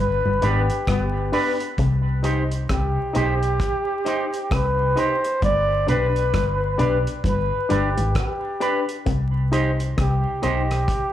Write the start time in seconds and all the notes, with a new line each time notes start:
Already playing: G1 G2
0.00 B4
0.25 G1 G2
0.42 G#1 G#2 B3 D4 G4 B4 D5, closed hi-hat
0.70 closed hi-hat
0.87 G1 G2 B3 G4, kick, cross-stick, closed hi-hat
1.32 D4 G4 B4 D5, open hi-hat
1.60 closed hi-hat
1.78 C2 C3, kick, closed hi-hat
2.23 D#4 G4 C5 D#5, closed hi-hat
2.52 closed hi-hat
2.69 C2 C3 G4, kick, cross-stick, closed hi-hat
3.13 B1 B2 D#4 G4 C5 D#5, closed hi-hat
3.43 closed hi-hat
3.60 kick, closed hi-hat
4.04 D#4 G4 C5 D#5, closed hi-hat
4.34 closed hi-hat
4.51 C2 C3 B4, kick, cross-stick, closed hi-hat
4.95 D#4 G4 C5 D#5, closed hi-hat
5.25 muted clean electric guitar stroke, closed hi-hat
5.42 G1 G2 D5, kick, closed hi-hat
5.87 B1 B2 D4 G4 B4 D5, closed hi-hat
6.16 closed hi-hat
6.33 G1 G2, kick, cross-stick, closed hi-hat
6.78 B1 B2 D4 G4 B4 D5, closed hi-hat
7.07 closed hi-hat
7.24 G1 G2 B4, kick, closed hi-hat
7.69 G1 G2 D4 G4 B4 D5, closed hi-hat
7.73 G4
7.97 G#1 G#2, closed hi-hat
8.15 G4, kick, cross-stick, closed hi-hat
8.60 D4 G4 B4 D5, closed hi-hat
8.89 closed hi-hat
9.06 C2 C3, kick, closed hi-hat
9.52 D#4 G4 C5 D#5, closed hi-hat
9.80 closed hi-hat
9.97 C2 C3 G4, kick, cross-stick, closed hi-hat
10.42 B1 B2 D#4 G4 C5 D#5, closed hi-hat
10.71 cross-stick, closed hi-hat
10.88 kick, closed hi-hat